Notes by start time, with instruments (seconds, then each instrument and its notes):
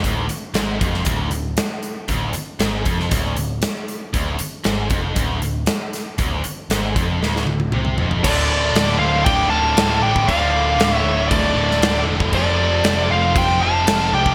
0.04 picked electric bass D1, overdriven electric guitar D2, kick, closed hi-hat
0.28 muted overdriven electric guitar stroke, muted distorted electric guitar stroke, muted picked electric bass stroke, closed hi-hat
0.54 picked electric bass G#1, overdriven electric guitar G#2, snare, closed hi-hat
0.81 picked electric bass F1, overdriven electric guitar F2, kick, closed hi-hat
0.94 snare
1.05 picked electric bass D1, overdriven electric guitar D2, kick, closed hi-hat
1.31 picked electric bass D1, overdriven electric guitar D2, closed hi-hat
1.57 snare, closed hi-hat
1.83 closed hi-hat
2.08 picked electric bass D1, overdriven electric guitar D2, kick, closed hi-hat
2.33 muted distorted electric guitar stroke, muted picked electric bass stroke, muted overdriven electric guitar stroke, closed hi-hat
2.59 picked electric bass G#1, overdriven electric guitar G#2, snare, closed hi-hat
2.84 picked electric bass F1, distorted electric guitar F2, kick, closed hi-hat
2.89 overdriven electric guitar F2
3.00 snare
3.11 picked electric bass D1, overdriven electric guitar D2, kick, closed hi-hat
3.37 picked electric bass D1, overdriven electric guitar D2, closed hi-hat
3.62 snare, closed hi-hat
3.88 closed hi-hat
4.13 picked electric bass D1, overdriven electric guitar D2, kick, closed hi-hat
4.39 muted distorted electric guitar stroke, muted picked electric bass stroke, muted overdriven electric guitar stroke, closed hi-hat
4.64 picked electric bass G#1, overdriven electric guitar G#2, snare, closed hi-hat
4.90 picked electric bass F1, overdriven electric guitar F2, kick, closed hi-hat
5.16 picked electric bass D1, overdriven electric guitar D2, kick, closed hi-hat
5.42 picked electric bass D1, overdriven electric guitar D2, closed hi-hat
5.66 snare, closed hi-hat
5.93 snare, closed hi-hat
6.18 picked electric bass D1, overdriven electric guitar D2, kick, closed hi-hat
6.44 muted distorted electric guitar stroke, muted overdriven electric guitar stroke, muted picked electric bass stroke, closed hi-hat
6.70 picked electric bass G#1, overdriven electric guitar G#2, snare, closed hi-hat
6.96 picked electric bass F1, overdriven electric guitar F2, kick, closed hi-hat
7.21 picked electric bass D1, overdriven electric guitar D2, snare
7.36 snare
7.47 picked electric bass D1, overdriven electric guitar D2, high tom
7.60 high tom
7.72 picked electric bass C2, overdriven electric guitar C3, mid tom
7.85 mid tom
7.98 picked electric bass F1, overdriven electric guitar F2, floor tom
8.11 floor tom
8.23 picked electric bass D1, overdriven electric guitar D2 A2, lead electric guitar A4 D5, kick, crash
8.28 overdriven electric guitar D3, distorted electric guitar A3 F4
8.73 picked electric bass D1, snare, crash
8.99 picked electric bass D1, lead electric guitar C5 F5
9.24 picked electric bass D1, distorted electric guitar D2 A2 D3, lead electric guitar D5 G5, kick, crash
9.50 picked electric bass D1, overdriven electric guitar A2 D3, lead electric guitar F5 A5
9.55 overdriven electric guitar D2
9.76 picked electric bass D1, overdriven electric guitar D2 A2, snare, crash
9.81 overdriven electric guitar D3
10.01 picked electric bass A1, lead electric guitar D5 G5
10.16 kick
10.27 picked electric bass D1, overdriven electric guitar D2, lead electric guitar D5 F5, kick, crash
10.31 overdriven electric guitar A2 D3, distorted electric guitar A3 F4
10.79 picked electric bass D1, snare, crash
10.93 lead electric guitar C#5 E5
11.03 picked electric bass D1
11.28 picked electric bass D1, distorted electric guitar D2 A2, lead electric guitar A4 D5, kick, crash
11.33 distorted electric guitar D3
11.56 picked electric bass D1, overdriven electric guitar A2 D3
11.60 overdriven electric guitar D2
11.71 snare
11.82 picked electric bass D1, overdriven electric guitar D2 A2 D3, snare, crash
12.06 picked electric bass E1
12.20 kick
12.32 picked electric bass F1, overdriven electric guitar F2 C3, distorted electric guitar A3 C4 F4, lead electric guitar D5, kick, crash
12.36 overdriven electric guitar F3, lead electric guitar A4
12.84 picked electric bass F1, snare, crash
13.10 picked electric bass F1, lead electric guitar C5 F5
13.35 picked electric bass F1, distorted electric guitar F2 C3 F3, lead electric guitar C5 G5, kick, crash
13.60 picked electric bass F1, overdriven electric guitar C3 F3, lead electric guitar F5 A5
13.65 overdriven electric guitar F2
13.86 picked electric bass F1, overdriven electric guitar F2 C3, snare, crash
13.91 overdriven electric guitar F3
14.12 picked electric bass C2, lead electric guitar D5 G5
14.26 kick